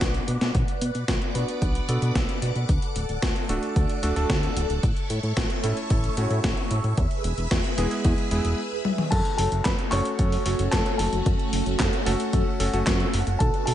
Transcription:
Already playing: electric grand piano B3 D4 F#4 B4, string machine B4 D5 F#5 D6
0.01 analog synth bass B1, kick, snare, closed hi-hat
0.14 closed hi-hat
0.28 analog synth bass B2, closed hi-hat
0.41 analog synth bass B2, snare, closed hi-hat
0.55 analog synth bass B1, string machine B4 D5 F#5 D6, kick, closed hi-hat
0.68 closed hi-hat
0.81 analog synth bass B2, closed hi-hat
0.95 analog synth bass B2, closed hi-hat
1.08 analog synth bass B1, kick, snare, closed hi-hat
1.22 closed hi-hat
1.35 analog synth bass B2, electric grand piano B3 D4 F#4 B4, closed hi-hat
1.48 closed hi-hat
1.62 analog synth bass B1, kick, closed hi-hat
1.75 closed hi-hat
1.89 analog synth bass B2, electric grand piano B3 D4 F#4 A4, closed hi-hat
2.02 analog synth bass B2, closed hi-hat
2.15 analog synth bass B1, kick, snare, closed hi-hat
2.29 closed hi-hat
2.42 analog synth bass B2, closed hi-hat
2.56 analog synth bass B2, closed hi-hat
2.69 analog synth bass D2, string machine A4 D5, kick, closed hi-hat
2.82 closed hi-hat
2.96 analog synth bass D1, closed hi-hat
3.09 analog synth bass D1, closed hi-hat
3.22 analog synth bass D2, kick, snare, closed hi-hat
3.36 closed hi-hat
3.49 analog synth bass D1, electric grand piano A3 D4 F#4 A4, closed hi-hat
3.63 closed hi-hat
3.76 analog synth bass D2, kick, closed hi-hat
3.90 closed hi-hat
4.03 analog synth bass D1, electric grand piano A3 D4 F#4 A4, closed hi-hat
4.16 analog synth bass D1, electric grand piano A3 D4 F#4 A4, closed hi-hat
4.30 analog synth bass D2, kick, snare, closed hi-hat
4.43 closed hi-hat
4.56 analog synth bass D1, closed hi-hat
4.70 analog synth bass D1, closed hi-hat
4.83 analog synth bass A1, string machine C#5 E5 C#6, kick, closed hi-hat
4.97 closed hi-hat
5.10 analog synth bass A2, closed hi-hat
5.23 analog synth bass A2, closed hi-hat
5.37 analog synth bass A1, kick, snare, closed hi-hat
5.50 closed hi-hat
5.64 analog synth bass A2, electric grand piano A3 C#4 E4 A4, closed hi-hat
5.77 closed hi-hat
5.90 analog synth bass A1, kick, closed hi-hat
6.04 closed hi-hat
6.17 analog synth bass A2, electric grand piano A3 C#4 E4 F#4, closed hi-hat
6.30 analog synth bass A2, closed hi-hat
6.44 analog synth bass A1, kick, snare, closed hi-hat
6.57 closed hi-hat
6.71 analog synth bass A2, closed hi-hat
6.84 analog synth bass A2, closed hi-hat
6.97 analog synth bass E2, string machine G#4 B4 B5, kick, closed hi-hat
7.11 closed hi-hat
7.24 analog synth bass E1, closed hi-hat
7.38 analog synth bass E1, closed hi-hat
7.51 analog synth bass E2, kick, snare, closed hi-hat
7.64 closed hi-hat
7.78 analog synth bass E1, electric grand piano G#3 B3 E4 G#4, closed hi-hat
7.91 closed hi-hat
8.05 analog synth bass E2, kick, closed hi-hat
8.18 closed hi-hat
8.31 analog synth bass E1, electric grand piano G#3 B3 E4 G#4, closed hi-hat
8.45 analog synth bass E1, closed hi-hat
8.85 high tom
8.98 mid tom
9.11 analog synth bass F#2, string machine A3 C#4 F#4, grand piano A4 A5, kick, closed hi-hat, crash
9.25 closed hi-hat
9.37 analog synth bass F#1, grand piano A4 A5, open hi-hat
9.52 analog synth bass F#1, closed hi-hat
9.64 analog synth bass F#2, grand piano B4 B5, kick, snare, clap, closed hi-hat
9.79 closed hi-hat
9.91 analog synth bass F#1, electric grand piano A3 C#4 F#4 A4, grand piano C#5 C#6, clap, open hi-hat
10.05 closed hi-hat
10.19 analog synth bass F#2, kick, closed hi-hat
10.32 open hi-hat
10.46 analog synth bass F#1, electric grand piano A3 C#4 F#4 A4, open hi-hat
10.59 analog synth bass F#1, closed hi-hat
10.71 analog synth bass F#2, grand piano A4 A5, kick, snare, clap, closed hi-hat
10.86 closed hi-hat
10.98 analog synth bass F#1, grand piano A4 A5, open hi-hat
11.13 analog synth bass F#1, closed hi-hat
11.26 analog synth bass F#2, kick, closed hi-hat
11.39 closed hi-hat
11.53 analog synth bass F#1, open hi-hat
11.66 analog synth bass F#1, closed hi-hat
11.80 analog synth bass F#2, kick, snare, clap, closed hi-hat
11.93 closed hi-hat
12.06 analog synth bass F#1, electric grand piano A3 C#4 F#4 A4, open hi-hat
12.20 closed hi-hat
12.33 analog synth bass F#2, kick, closed hi-hat
12.60 analog synth bass F#1, electric grand piano A3 C#4 F#4 A4, open hi-hat
12.73 analog synth bass F#1, electric grand piano A3 C#4 F#4 A4, closed hi-hat
12.87 analog synth bass F#2, kick, snare, clap, closed hi-hat
13.00 closed hi-hat
13.14 analog synth bass F#1, open hi-hat
13.27 analog synth bass F#1, closed hi-hat
13.39 analog synth bass B1, string machine B3 D4, grand piano A4 A5, kick, closed hi-hat
13.54 closed hi-hat
13.66 analog synth bass B2, grand piano A4 A5, open hi-hat

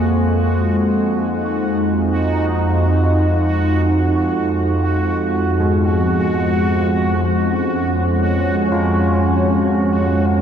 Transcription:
Already playing: analog synth pad F2 A#3, synth drone F2 G#3, synth texture F#4
0.72 analog synth pad D#4
4.68 analog synth pad G#3
5.60 church bells G#3
7.21 analog synth pad C#4
8.72 church bells F4

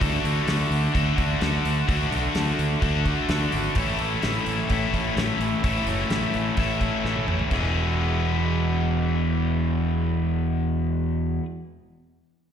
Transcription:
0.00 fingered electric bass D2, overdriven electric guitar D3 A3 D4 F#4 A4, kick, open hi-hat
0.23 fingered electric bass D2, overdriven electric guitar A3 D4 F#4, open hi-hat
0.46 fingered electric bass D2, overdriven electric guitar D3 A3 D4 F#4, snare, open hi-hat
0.71 fingered electric bass D2, open hi-hat
0.93 fingered electric bass D2, overdriven electric guitar D3 D4 F#4 A4, kick, open hi-hat
1.16 fingered electric bass D2, overdriven electric guitar A3 D4 F#4, kick, open hi-hat
1.41 fingered electric bass D2, overdriven electric guitar D3 A3 D4 F#4, snare, open hi-hat
1.64 fingered electric bass D2, overdriven electric guitar A3 D4 F#4, open hi-hat
1.87 fingered electric bass D2, overdriven electric guitar D3 A3 D4 F#4 A4, kick, open hi-hat
2.10 fingered electric bass B1, overdriven electric guitar A3 D4 F#4, open hi-hat
2.34 fingered electric bass D2, overdriven electric guitar D3 A3 D4 F#4, snare, open hi-hat
2.59 fingered electric bass D2, open hi-hat
2.80 fingered electric bass D2, overdriven electric guitar D3 D4 F#4 A4, kick, open hi-hat
3.04 overdriven electric guitar A3 D4 F#4, kick, open hi-hat
3.29 fingered electric bass D2, overdriven electric guitar D3 A3 D4 F#4, snare, open hi-hat
3.52 fingered electric bass G#1, overdriven electric guitar A3 D4 F#4, open hi-hat
3.75 fingered electric bass A1, overdriven electric guitar A2 E3 A3 C#4 E4 A4, kick, open hi-hat
3.98 fingered electric bass A1, overdriven electric guitar A3 C#4 E4, open hi-hat
4.22 fingered electric bass A1, overdriven electric guitar E3 A3 C#4 E4, snare, open hi-hat
4.46 fingered electric bass A1, open hi-hat
4.69 fingered electric bass A1, overdriven electric guitar A2 A3 C#4 E4 A4, kick, open hi-hat
4.94 fingered electric bass A1, overdriven electric guitar A3 C#4 E4, kick, open hi-hat
5.17 fingered electric bass A1, overdriven electric guitar A2 E3 A3 C#4 E4, snare, open hi-hat
5.40 fingered electric bass A1, overdriven electric guitar A3 C#4 E4, open hi-hat
5.63 fingered electric bass A1, overdriven electric guitar A2 E3 A3 C#4 E4 A4, kick, open hi-hat
5.87 fingered electric bass F#1, overdriven electric guitar A3 C#4 E4, open hi-hat
6.10 fingered electric bass A1, overdriven electric guitar E3 A3 C#4 E4, snare, open hi-hat
6.34 fingered electric bass A1, open hi-hat
6.57 fingered electric bass A1, overdriven electric guitar A2 A3 C#4 E4 A4, kick, open hi-hat
6.80 overdriven electric guitar A3 C#4 E4, kick, open hi-hat
7.04 fingered electric bass A1, overdriven electric guitar A2 E3 A3 C#4 E4, snare
7.16 high tom
7.26 fingered electric bass A1, overdriven electric guitar A3 C#4 E4, mid tom
7.39 floor tom
7.49 fingered electric bass E1, overdriven electric guitar E2 B2 E3 G#3 B3 E4, kick, crash
7.53 overdriven electric guitar G#3 B3 G#4

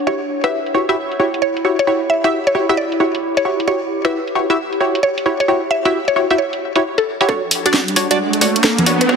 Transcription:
Already playing: ambient pad A4 C#5 F#5
0.07 ambient pad E4, synth stab E4 F#4 G4 C#5, synth pluck C#5
0.24 ambient pad G4
0.44 synth stab E4 F#4 G4 E5, synth pluck B4, closed hi-hat
0.66 closed hi-hat
0.75 synth stab E4 F#4 G4 C#5
0.89 synth stab E4 F#4 G4 E5, closed hi-hat
1.12 closed hi-hat
1.20 synth stab E4 F#4 G4 C#5
1.34 closed hi-hat
1.42 synth pluck C#5
1.57 closed hi-hat
1.65 synth stab E4 F#4 G4 C#5
1.79 synth pluck C#5, closed hi-hat
1.87 synth stab E4 F#4 G4 C#5
2.10 synth pluck E5
2.24 synth stab E4 F#4 G4 E5, closed hi-hat
2.47 synth pluck C#5, closed hi-hat
2.55 synth stab E4 F#4 G4 C#5
2.69 synth stab E4 F#4 G4 E5, closed hi-hat
2.77 synth pluck D5
2.92 closed hi-hat
3.00 synth stab E4 F#4 G4 C#5
3.15 closed hi-hat
3.37 synth pluck C#5, closed hi-hat
3.45 synth stab E4 F#4 G4 C#5
3.60 closed hi-hat
3.67 synth stab E4 F#4 G4 C#5, synth pluck C#5
4.05 synth stab E4 F#4 G4 E5, synth pluck B4, closed hi-hat
4.27 closed hi-hat
4.35 synth stab E4 F#4 G4 C#5
4.50 synth stab E4 F#4 G4 E5, closed hi-hat
4.73 closed hi-hat
4.80 synth stab E4 F#4 G4 C#5
4.95 closed hi-hat
5.03 synth pluck C#5
5.18 closed hi-hat
5.26 synth stab E4 F#4 G4 C#5
5.40 synth pluck C#5, closed hi-hat
5.48 synth stab E4 F#4 G4 C#5
5.71 synth pluck E5
5.85 synth stab E4 F#4 G4 E5, closed hi-hat
6.08 synth pluck C#5, closed hi-hat
6.16 synth stab E4 F#4 G4 C#5
6.30 synth stab E4 F#4 G4 E5, closed hi-hat
6.38 synth pluck C#5
6.53 closed hi-hat
6.76 synth stab E4 F#4 G4 C#5, closed hi-hat
6.98 synth pluck A4, closed hi-hat
7.21 synth stab E4 F#4 G4 C#5, closed hi-hat
7.29 synth stab D4 F#4 C#5, ambient pad D4, synth pluck A4, kick, riser
7.43 ambient pad F#5
7.48 ambient pad A4, open hi-hat
7.66 synth stab D4 F#4 D5, synth pluck F#4, closed hi-hat
7.74 snare
7.88 closed hi-hat
7.96 synth stab D4 F#4 C#5, open hi-hat
8.11 synth stab D4 F#4 D5, closed hi-hat
8.33 closed hi-hat
8.41 synth stab D4 F#4 C#5, kick, open hi-hat
8.56 closed hi-hat
8.64 synth pluck A4, snare
8.78 cross-stick, closed hi-hat, high conga
8.86 synth stab D4 F#4 C#5, open hi-hat
9.01 synth pluck B4, cross-stick, closed hi-hat
9.09 synth stab D4 F#4 C#5, kick

